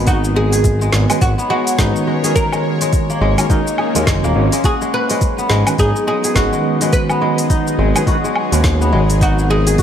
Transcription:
Already playing: analog synth bass G#1, synth drone F#3 B3 D#4 G#4 B4, kora G#3 B3 G#4
0.07 kora D#4, oud F#4, kick, open hi-hat, shaker
0.24 shaker
0.33 kora G#3, oud G#4, synth drone C#5
0.53 kora G#4, open hi-hat, shaker
0.64 kick, open hi-hat, shaker
0.81 kora G#3, shaker
0.93 analog synth bass G#1, snare
1.09 tine electric piano D#3 G#3 C#4 F#4 B4, kora G#3, open hi-hat, low woodblock, shaker
1.21 analog synth bass G#1, oud F#4, kick, open hi-hat, shaker
1.38 kora B3, shaker
1.50 kora G#3, oud F#4
1.67 open hi-hat, shaker
1.78 analog synth bass G#1, tine electric piano D#3 G#3 C#4 F#4 B4, kora D#4, kick, snare, open hi-hat, shaker
1.96 shaker
2.07 kora G#3
2.22 tine electric piano D#3 G#3 C#4 F#4 A#4, kora G#4, open hi-hat, shaker
2.36 synth drone A#3, oud A#4, kick, open hi-hat, shaker
2.52 kora G#3, low woodblock, shaker
2.80 kora G#3, synth drone C#4, open hi-hat, shaker
2.93 kick, open hi-hat, shaker
3.03 synth drone A#4
3.10 kora A#3, shaker
3.21 analog synth bass G#1, kora G#3
3.37 tine electric piano D#3 G#3 C#4 F#4 A#4, open hi-hat, low woodblock, shaker
3.49 tine electric piano D#3 G#3 C#4 F#4 A#4, kora D#4, kick, open hi-hat, shaker
3.67 shaker
3.78 kora G#4, low woodblock
3.94 analog synth bass D#2, tine electric piano D#3 G#3 C#4 F#4 A#4, kora G#3, open hi-hat, shaker
4.07 analog synth bass F#1, kora G#3, kick, snare, open hi-hat, shaker
4.24 analog synth bass D#1, kora A#3, shaker
4.35 analog synth bass G#1, tine electric piano D#3 G#3 C#4 F#4 C#5
4.52 kora G#3, open hi-hat, shaker
4.64 synth drone F#3, kora F#4, oud G#4, kick, open hi-hat, shaker
4.80 kora G#3, synth drone B3, shaker
4.85 synth drone D#4
4.94 oud B4
5.07 kora G#3, synth drone D#5, open hi-hat, shaker
5.21 kick, open hi-hat, shaker
5.38 kora B3, shaker
5.43 synth drone G#4
5.50 analog synth bass G#1, kora G#3, snare
5.66 tine electric piano D#3 G#3 C#4 F#4 B4, open hi-hat, low woodblock, shaker
5.78 analog synth bass G#1, kora D#4, oud G#4, kick, open hi-hat, shaker
5.96 shaker
6.07 kora G#3, oud G#4
6.24 kora G#4, open hi-hat, shaker
6.35 analog synth bass G#1, tine electric piano D#3 G#3 C#4 F#4 B4, kora F#4, kick, snare, open hi-hat, shaker
6.53 kora G#3, shaker
6.80 tine electric piano D#3 G#3 C#4 F#4 B4, kora G#3, open hi-hat, shaker
6.93 oud B4, kick, open hi-hat, shaker
7.10 kora B3, low woodblock, shaker
7.22 kora G#3
7.38 open hi-hat, shaker
7.50 kora D#4, kick, open hi-hat, shaker
7.67 shaker
7.79 analog synth bass G#1, kora G#3
7.95 tine electric piano D#3 G#3 C#4 F#4 B4, kora G#4, open hi-hat, low woodblock, shaker
8.06 tine electric piano D#3 G#3 C#4 F#4 B4, kora F#4, kick, open hi-hat, shaker
8.24 kora G#3, shaker
8.36 low woodblock
8.52 analog synth bass D#2, tine electric piano D#3 G#3 C#4 F#4 B4, kora G#3, open hi-hat, shaker
8.64 kick, snare, open hi-hat, shaker
8.81 kora B3, shaker
8.92 analog synth bass G#1, tine electric piano D#3 G#3 C#4 F#4 C#5, kora G#3
9.10 open hi-hat, shaker
9.21 kora D#4, oud F#4, kick, open hi-hat, shaker
9.39 shaker
9.50 kora G#3, oud G#4
9.67 kora G#4, open hi-hat, shaker
9.78 kora F#4, kick, open hi-hat, shaker

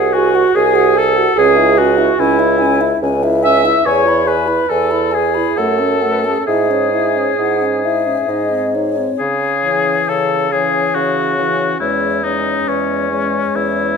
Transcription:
Already playing: bassoon C2, french horn F#4, clarinet G#4, oboe G#4, flute F#5
0.13 oboe F#4, clarinet F#4, french horn G#4, flute G#5
0.35 french horn F#4, flute F#5
0.55 bassoon C2, clarinet G#4, french horn G#4, oboe G#4, flute G#5
0.75 french horn F#4, flute F#5
0.95 french horn G#4, clarinet A4, oboe A4, flute G#5
1.16 french horn F#4, flute F#5
1.36 bassoon C#2, french horn C#4, clarinet G#4, oboe G#4, flute G#5
1.56 french horn E4, flute E5
1.78 french horn C#4, oboe F#4, clarinet F#4, flute G#5
1.98 french horn E4, flute E5
2.17 bassoon C#2, french horn C#4, oboe E4, clarinet E4, flute G#5
2.39 french horn E4, flute E5
2.58 french horn C#4, flute G#5
2.81 french horn E4, flute E5
3.02 bassoon C#2, french horn C#4, flute G#5
3.23 french horn E4, flute E5
3.43 french horn C#4, oboe E5, clarinet E5, flute G#5
3.65 french horn E4, flute E5
3.85 bassoon E2, french horn G#4, oboe C#5, clarinet C#5, flute G#5
4.07 french horn E4, flute B5
4.26 french horn G#4, oboe B4, clarinet B4, flute G#5
4.48 french horn E4, flute B5
4.69 bassoon E2, french horn G#4, oboe A4, clarinet A4, flute G#5
4.91 french horn E4, flute B5
5.11 oboe G#4, french horn G#4, clarinet G#4, flute G#5
5.35 french horn E4, flute B5
5.56 bassoon F#2, french horn A3, oboe A4, clarinet A4, flute F#5
5.79 french horn C#4, flute A5
6.02 french horn A3, flute F#5
6.12 clarinet B4
6.21 clarinet A4, flute A5
6.25 french horn C#4, clarinet G#4
6.39 clarinet A4
6.47 bassoon G#2, french horn E4, oboe G#4, clarinet G#4, flute E5
6.70 french horn C#4, flute C#5
6.93 french horn E4, flute E5
7.16 french horn C#4, flute C#5
7.37 bassoon G#2, french horn E4, flute F#5
7.61 french horn C#4
7.84 french horn E4, flute E5
8.07 french horn C#4
8.28 bassoon G#2, french horn D#4, flute D#5
8.51 french horn C4
8.75 french horn D#4, flute C#5
8.97 french horn C4
9.19 bassoon C#3, oboe G#4
9.64 french horn E3, clarinet C#4, flute C#5
10.09 bassoon C#3, oboe A4
10.52 french horn E3, clarinet C#4, oboe G#4, flute C#5
10.95 bassoon C#3, oboe F#4
11.37 french horn E3, clarinet C#4, flute C#5
11.80 bassoon E2, french horn G#3, clarinet C#4, oboe E4, flute C#5
12.24 french horn G#3, clarinet C#4, oboe D#4, flute C#5
12.68 bassoon E2, oboe C#4
13.11 french horn G#3, clarinet C#4, flute C#5
13.55 bassoon E2, oboe E4

